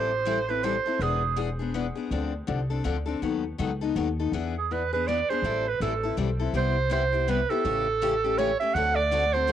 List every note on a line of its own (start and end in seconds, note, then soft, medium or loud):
0.00 0.78 A1 medium
0.00 0.10 E3 medium
0.00 0.10 G3 medium
0.00 0.10 C4 medium
0.00 0.11 E4 medium
0.00 0.11 A4 medium
0.00 0.51 C5 medium
0.25 0.37 E3 medium
0.25 0.37 G3 medium
0.25 0.37 C4 medium
0.25 0.38 E4 medium
0.25 0.38 A4 medium
0.48 0.63 C4 soft
0.48 0.63 E4 medium
0.48 0.63 A4 soft
0.48 0.65 B4 medium
0.63 0.74 E3 medium
0.63 0.75 G3 medium
0.63 0.75 C4 medium
0.63 0.75 E4 medium
0.63 0.75 A4 medium
0.63 1.04 C5 medium
0.86 1.01 C4 soft
0.86 1.01 E4 medium
0.86 1.00 A4 soft
0.99 1.89 E1 medium
0.99 1.21 E3 medium
0.99 1.22 B3 medium
0.99 1.22 D4 medium
0.99 1.38 G#4 medium
0.99 1.22 G#4 medium
1.37 1.48 E3 medium
1.37 1.48 B3 medium
1.37 1.48 D4 medium
1.37 1.48 G#4 medium
1.59 1.73 B3 soft
1.59 1.74 D4 soft
1.59 1.73 G#4 soft
1.74 1.85 E3 medium
1.74 1.85 B3 medium
1.74 1.86 D4 medium
1.74 1.86 G#4 medium
1.95 2.11 B3 soft
1.95 2.11 D4 soft
1.95 2.10 G#4 soft
2.11 2.40 D2 medium
2.11 2.32 D3 medium
2.11 2.32 F3 medium
2.11 2.32 C4 medium
2.11 2.33 D4 medium
2.11 2.33 A4 medium
2.47 2.80 C2 medium
2.47 2.59 D3 medium
2.47 2.59 F3 medium
2.47 2.59 C4 medium
2.47 2.59 D4 medium
2.47 2.59 A4 medium
2.70 2.83 C4 soft
2.70 2.84 D4 soft
2.70 2.84 A4 soft
2.84 3.16 D2 medium
2.84 2.96 D3 medium
2.84 2.96 F3 medium
2.84 2.96 C4 medium
2.84 2.96 D4 medium
2.84 2.96 A4 medium
3.06 3.22 C4 soft
3.06 3.21 D4 soft
3.06 3.21 A4 soft
3.22 3.52 D#2 medium
3.22 3.43 D#3 medium
3.22 3.43 F#3 medium
3.22 3.43 B3 medium
3.22 3.43 D#4 medium
3.22 3.43 A4 medium
3.58 3.91 C#2 medium
3.58 3.70 D#3 medium
3.58 3.70 F#3 medium
3.58 3.70 B3 medium
3.58 3.70 D#4 medium
3.58 3.71 A4 medium
3.81 3.95 B3 soft
3.81 3.96 D#4 soft
3.81 3.95 A4 soft
3.96 4.27 D#2 medium
3.96 4.07 D#3 medium
3.96 4.07 F#3 medium
3.96 4.07 B3 medium
3.96 4.07 D#4 medium
3.96 4.08 A4 medium
4.19 4.32 B3 soft
4.19 4.33 D#4 soft
4.19 4.33 A4 medium
4.32 5.21 E2 medium
4.32 4.54 E3 medium
4.32 4.54 B3 medium
4.32 4.54 D4 medium
4.32 4.54 G#4 medium
4.58 4.73 G#4 medium
4.71 4.81 E3 medium
4.71 4.81 B3 medium
4.71 4.82 D4 medium
4.71 4.82 G#4 medium
4.71 4.92 B4 medium
4.93 5.07 B3 soft
4.93 5.07 D4 soft
4.93 5.06 G#4 medium
4.93 5.09 B4 medium
5.07 5.18 E3 medium
5.07 5.19 B3 medium
5.07 5.19 D4 medium
5.07 5.19 G#4 medium
5.07 5.31 D5 medium
5.29 5.44 B3 soft
5.29 5.44 D4 soft
5.29 5.44 G#4 medium
5.29 5.69 C5 medium
5.42 5.72 A1 medium
5.42 5.65 E3 medium
5.42 5.65 G3 medium
5.42 5.65 C4 medium
5.42 5.65 E4 medium
5.42 5.65 A4 medium
5.68 5.81 B4 medium
5.80 6.12 A1 medium
5.80 5.92 E3 medium
5.80 5.92 G3 medium
5.80 5.92 C4 medium
5.80 5.92 E4 medium
5.80 6.16 A4 medium
5.80 5.93 A4 medium
6.03 6.17 C4 soft
6.03 6.17 E4 soft
6.03 6.17 A4 soft
6.17 6.49 B1 medium
6.17 6.28 E3 medium
6.17 6.28 G3 medium
6.17 6.29 C4 medium
6.17 6.29 E4 medium
6.17 6.29 A4 medium
6.39 6.54 C4 soft
6.39 6.54 E4 soft
6.39 6.54 A4 medium
6.53 7.42 C2 medium
6.53 6.75 C3 medium
6.53 6.75 G3 medium
6.53 6.75 B3 medium
6.53 6.75 E4 medium
6.53 6.76 G4 medium
6.53 6.90 C5 medium
6.90 7.02 C3 medium
6.90 7.02 G3 medium
6.90 7.02 B3 medium
6.90 7.02 E4 medium
6.90 7.02 G4 medium
6.90 7.31 C5 medium
7.13 7.28 B3 soft
7.13 7.28 E4 soft
7.13 7.27 G4 medium
7.28 7.39 C3 medium
7.28 7.39 G3 medium
7.28 7.40 B3 medium
7.28 7.39 E4 medium
7.28 7.40 G4 medium
7.28 7.51 B4 medium
7.50 7.65 B3 soft
7.50 7.65 E4 soft
7.50 7.64 G4 medium
7.50 8.39 A4 medium
7.64 8.53 A1 medium
7.64 7.86 C#3 medium
7.64 7.86 E3 medium
7.64 7.86 A3 medium
7.64 7.86 C#4 medium
7.64 7.86 G4 medium
8.01 8.13 C#3 medium
8.01 8.13 E3 medium
8.01 8.13 A3 medium
8.01 8.13 C#4 medium
8.01 8.13 G4 loud
8.24 8.38 A3 soft
8.24 8.38 C#4 soft
8.24 8.38 G4 medium
8.38 8.49 C#3 medium
8.38 8.50 E3 medium
8.38 8.50 A3 medium
8.38 8.50 C#4 medium
8.38 8.50 G4 medium
8.38 8.59 C#5 medium
8.59 8.75 A3 soft
8.59 8.75 C#4 medium
8.59 8.75 G4 medium
8.59 8.76 E5 medium
8.74 9.52 D2 medium
8.74 8.96 D3 medium
8.74 8.97 A3 medium
8.74 8.97 C4 medium
8.74 8.97 F#4 medium
8.74 8.97 A4 medium
8.74 8.97 F#5 loud
8.95 9.35 D5 loud
9.12 9.23 D3 medium
9.12 9.23 A3 medium
9.12 9.24 C4 medium
9.12 9.23 F#4 medium
9.12 9.24 A4 loud
9.33 9.48 C4 soft
9.33 9.48 F#4 soft
9.33 9.48 A4 soft
9.33 9.52 C5 loud
9.47 9.52 D3 medium
9.47 9.52 A3 medium
9.47 9.52 C4 medium
9.47 9.52 F#4 medium